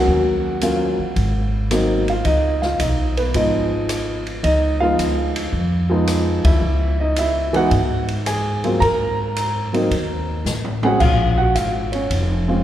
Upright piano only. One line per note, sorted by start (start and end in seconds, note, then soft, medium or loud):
0.00 0.58 F#3 medium
0.00 0.59 A#3 medium
0.00 0.59 C#4 medium
0.00 0.59 F#4 medium
0.00 2.06 F#5 medium
0.62 0.95 F#3 medium
0.62 0.96 A#3 medium
0.62 0.96 C#4 medium
0.62 0.96 F4 medium
1.71 2.05 F#3 medium
1.71 2.05 A#3 medium
1.71 2.05 C4 medium
1.71 2.05 D#4 medium
2.10 2.26 F4 medium
2.10 2.25 F5 medium
2.25 2.61 D#4 medium
2.25 2.60 D#5 medium
2.62 2.80 F4 medium
2.62 2.80 F5 medium
2.80 3.16 D#4 medium
2.80 3.18 D#5 medium
3.17 3.34 B3 medium
3.17 3.34 B4 medium
3.35 4.20 F3 medium
3.35 4.20 G#3 medium
3.35 4.20 B3 medium
3.35 4.20 D#4 medium
3.35 4.23 D#5 medium
4.44 4.80 D#4 medium
4.44 4.82 D#5 medium
4.80 5.50 F3 medium
4.80 5.50 G#3 medium
4.80 5.50 B3 medium
4.80 5.50 D#4 medium
4.80 5.51 F4 medium
4.80 5.49 F5 medium
5.90 6.59 F3 medium
5.90 6.59 G#3 medium
5.90 6.60 B3 medium
5.90 6.60 D#4 medium
6.45 6.97 E4 medium
6.45 7.02 E5 medium
7.00 7.17 D#4 medium
7.00 7.17 D#5 medium
7.19 7.54 E4 medium
7.19 7.57 E5 medium
7.53 7.70 E3 medium
7.53 7.71 G#3 medium
7.53 7.70 B3 medium
7.53 7.71 D#4 medium
7.53 8.07 F#5 loud
7.57 8.07 F#4 medium
8.27 8.79 G#4 medium
8.27 8.78 G#5 medium
8.64 8.80 F#3 medium
8.64 8.80 A#3 medium
8.64 8.80 C4 medium
8.64 8.81 F4 medium
8.80 10.43 A#4 medium
8.80 10.41 A#5 loud
9.73 9.89 F#3 medium
9.73 9.90 A#3 medium
9.73 9.90 C4 medium
9.73 9.90 D#4 medium
10.83 10.99 G#3 medium
10.83 10.99 C4 medium
10.83 11.00 C#4 medium
10.83 11.01 F#4 medium
10.83 11.00 G#4 medium
10.83 11.01 F#5 medium
11.00 11.36 F4 medium
11.00 11.35 F5 loud
11.38 11.55 F#4 medium
11.38 11.56 F#5 medium
11.55 11.91 F4 medium
11.55 11.94 F5 medium
11.92 12.10 C#4 medium
11.92 12.09 C#5 medium
12.48 12.63 G#3 medium
12.48 12.63 C4 medium
12.48 12.63 C#4 medium
12.48 12.63 F4 medium